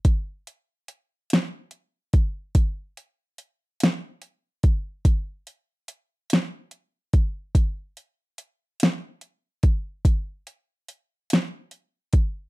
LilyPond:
\new DrumStaff \with { instrumentName = "Drums" } \drummode { \time 6/8 \tempo 4. = 48 <hh bd>8 hh8 hh8 <hh sn>8 hh8 <hh bd>8 | <hh bd>8 hh8 hh8 <hh sn>8 hh8 <hh bd>8 | <hh bd>8 hh8 hh8 <hh sn>8 hh8 <hh bd>8 | <hh bd>8 hh8 hh8 <hh sn>8 hh8 <hh bd>8 |
<hh bd>8 hh8 hh8 <hh sn>8 hh8 <hh bd>8 | }